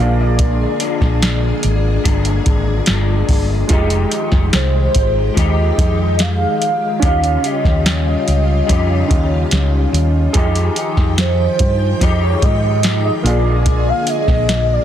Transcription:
Already playing: clean electric guitar G#3 D4, upright piano A#3, soft synth lead F5
0.00 fingered electric bass A#1, clean electric guitar A#2 F3, string machine D3 A#3 G#4, upright piano F4 G#4 D5
0.20 soft synth lead D5
0.39 kick, closed hi-hat
0.80 clean electric guitar F3 G#3 D4, closed hi-hat
1.01 fingered electric bass A#1, kick, snare
1.22 snare, closed hi-hat
1.63 fingered electric bass G#1, closed hi-hat
2.04 fingered electric bass G1, clean electric guitar A#2 F3 G#3 D4, kick, closed hi-hat
2.25 closed hi-hat
2.46 fingered electric bass G#1, kick, closed hi-hat
2.86 fingered electric bass G1, clean electric guitar A#2 F3 G#3 D4, snare, closed hi-hat
3.28 fingered electric bass G1, kick, open hi-hat
3.67 fingered electric bass F1, string machine D#3 G4, clean electric guitar F3 G#3, upright piano G#3 F4 G4, kick, closed hi-hat
3.72 string machine G#3, clean electric guitar D#4 G4, upright piano D#5
3.90 closed hi-hat
4.12 closed hi-hat
4.32 fingered electric bass F1, kick, snare
4.53 fingered electric bass C2, soft synth lead C5, snare, closed hi-hat
4.95 fingered electric bass G#1, kick, closed hi-hat
5.34 fingered electric bass D#2, clean electric guitar F3 G#3 D#4, soft synth lead D#5, kick, closed hi-hat
5.39 clean electric guitar G4
5.78 fingered electric bass F2, kick, closed hi-hat
6.19 soft synth lead F5, snare, closed hi-hat
6.62 closed hi-hat
6.99 fingered electric bass D#2, string machine C#3, clean electric guitar D#3 C#4 F4, upright piano C#4 F4 G4, kick, closed hi-hat
7.04 string machine G3 F4, clean electric guitar G4, upright piano D#5, soft synth lead F5
7.24 closed hi-hat
7.42 clean electric guitar C#4 F4 G4, closed hi-hat
7.47 soft synth lead D#5
7.65 fingered electric bass D#2, kick, snare
7.86 snare, closed hi-hat
8.28 fingered electric bass C#2, closed hi-hat
8.67 fingered electric bass F2, clean electric guitar D#3 C#4 F4, kick, closed hi-hat
8.71 clean electric guitar G4
9.08 fingered electric bass D#2, upright piano C#4 F4 G4 D#5, kick, closed hi-hat
9.51 fingered electric bass C#2, snare, closed hi-hat
9.93 fingered electric bass D#2, closed hi-hat
10.33 fingered electric bass F2, string machine D#3, clean electric guitar F3 G#3 D#4 G4, upright piano F4 G4 G#4, kick, closed hi-hat
10.37 string machine F3 G5, upright piano D#5
10.55 closed hi-hat
10.76 clean electric guitar D#4 G4, closed hi-hat
10.97 fingered electric bass F2, kick, snare
11.18 soft synth lead C5, snare, closed hi-hat
11.59 fingered electric bass G2, kick, closed hi-hat
12.00 fingered electric bass F2, clean electric guitar F3 G#3 D#4 G4, soft synth lead D#5, kick, closed hi-hat
12.22 soft synth lead C#5
12.42 fingered electric bass G#2, soft synth lead D#5, kick, closed hi-hat
12.83 clean electric guitar F3 G#3 D#4 G4, snare, closed hi-hat
13.05 soft synth lead D#5
13.22 fingered electric bass A#1, string machine D3 A#3 G#4, clean electric guitar F3 G#3, upright piano A#3 F4 G#4, soft synth lead D5, closed hi-hat
13.27 clean electric guitar A#2, upright piano F5
13.66 kick, closed hi-hat
13.89 soft synth lead F5
14.07 soft synth lead D#5, closed hi-hat
14.28 fingered electric bass A#1, kick, snare
14.49 snare, closed hi-hat
14.73 soft synth lead D5

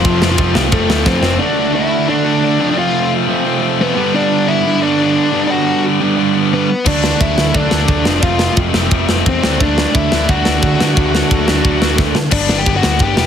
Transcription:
Already playing: lead electric guitar F3 F4
0.04 picked electric bass F1, distorted electric guitar F2 C3 F3 A3 C4 F4, kick, ride
0.21 picked electric bass F1, distorted electric guitar F2 C3 F3 A3 C4 F4, snare
0.32 lead electric guitar F3 F4
0.38 picked electric bass F1, distorted electric guitar F2 C3 F3 A3 C4 F4, kick, ride
0.55 picked electric bass C2, distorted electric guitar F2 C3 F3 A3 C4 F4, lead electric guitar G3 G4, snare
0.72 picked electric bass F1, distorted electric guitar F2 C3 F3 A3 C4 F4, lead electric guitar A3 A4, kick, ride
0.89 picked electric bass D2, distorted electric guitar F2 C3 F3 A3 C4 F4, snare
1.06 picked electric bass F2, distorted electric guitar F2 C3 F3 A3 C4 F4, lead electric guitar C4 C5, kick, snare
1.22 picked electric bass F1, distorted electric guitar F2 C3 F3 A3 C4 F4, snare
1.39 distorted electric guitar D3 A3 D4 F#4, lead electric guitar D4 D5
1.75 lead electric guitar E4 E5
2.07 distorted electric guitar D3 A3 D4, lead electric guitar D4 D5
2.24 distorted electric guitar D3 A3 D4 F#4
2.41 distorted electric guitar D3 A3 D4 F#4
2.59 distorted electric guitar F2 C3 F3 A3 C4 F4
2.78 lead electric guitar F4 F5
3.27 distorted electric guitar F2 C3 F3
3.45 distorted electric guitar F3 A3 C4 F4
3.61 distorted electric guitar F3 A3 C4 F4
3.81 lead electric guitar B3 B4
3.95 distorted electric guitar G2 D3 G3 B3 D4
4.14 lead electric guitar D4 D5
4.48 lead electric guitar E4 E5
4.64 distorted electric guitar G2 D3 G3
4.81 distorted electric guitar G2 D3 G3 B3 D4, lead electric guitar D4 D5
4.98 distorted electric guitar G2 D3 G3 B3 D4
5.32 distorted electric guitar G2 D3 G3 B3 D4
5.50 lead electric guitar F#4 F#5
6.00 distorted electric guitar G2 D3 G3
6.17 distorted electric guitar G2 D3 G3 B3 D4
6.34 distorted electric guitar G2 D3 G3 B3 D4
6.53 lead electric guitar B3 B4
6.85 picked electric bass D2, distorted electric guitar D3 F#3 A3 D4, lead electric guitar D4 D5, kick, crash
7.04 snare
7.21 picked electric bass D2, lead electric guitar E4 E5, kick, ride
7.38 picked electric bass D2, snare
7.53 picked electric bass D2, distorted electric guitar D3 A3 D4, lead electric guitar D4 D5, kick, ride
7.71 picked electric bass D2, distorted electric guitar D3 F#3 A3 D4, snare
7.87 picked electric bass D2, distorted electric guitar D3 F#3 A3 D4, kick, ride
8.04 picked electric bass F1, distorted electric guitar F2 C3 F3 A3 C4, snare
8.22 picked electric bass F1, lead electric guitar F4 F5, kick, ride
8.39 snare
8.57 picked electric bass F1, kick, ride
8.73 picked electric bass F1, distorted electric guitar F2 C3 F3, snare
8.91 picked electric bass F1, distorted electric guitar F2 C3 F3 A3 C4, kick, ride
9.08 picked electric bass F1, distorted electric guitar F2 C3 F3 A3 C4, snare
9.26 picked electric bass E2, lead electric guitar C4 C5, kick, ride
9.42 picked electric bass D2, distorted electric guitar D3 F#3 A3 D4, snare
9.60 picked electric bass D2, lead electric guitar D4 D5, kick, ride
9.78 snare
9.95 picked electric bass D2, lead electric guitar E4 E5, kick, ride
10.11 picked electric bass D2, distorted electric guitar D3 A3 D4, snare
10.28 picked electric bass D2, distorted electric guitar D3 F#3 A3 D4, lead electric guitar F#4 F#5, kick, ride
10.44 picked electric bass D2, distorted electric guitar D3 F#3 A3 D4, snare
10.62 picked electric bass D2, kick, ride
10.78 distorted electric guitar D3 F#3 A3 D4, picked electric bass D3, snare
10.97 picked electric bass D2, kick, ride
11.15 snare
11.31 picked electric bass D2, kick, ride
11.47 picked electric bass D2, distorted electric guitar D3 A3 D4, snare
11.63 picked electric bass D2, distorted electric guitar D3 F#3 A3 D4, kick, ride
11.80 picked electric bass D2, distorted electric guitar D3 F#3 A3 D4, snare
11.98 picked electric bass D2, kick, snare
12.15 picked electric bass D3, snare
12.31 picked electric bass G1, distorted electric guitar G2 D3 G3 B3 D4, lead electric guitar D4 D5, kick, crash
12.49 picked electric bass G1, distorted electric guitar G2 D3 G3 B3 D4, snare
12.58 lead electric guitar G4 G5
12.66 picked electric bass G1, distorted electric guitar G2 D3 G3 B3 D4, kick, ride
12.76 lead electric guitar F#4 F#5
12.82 picked electric bass D2, distorted electric guitar G2 D3 G3 B3 D4, snare
12.99 picked electric bass G1, distorted electric guitar G2 D3 G3 B3 D4, lead electric guitar G5, kick, ride
13.04 lead electric guitar G4
13.17 picked electric bass E1, distorted electric guitar G2 D3 G3 B3 D4, snare

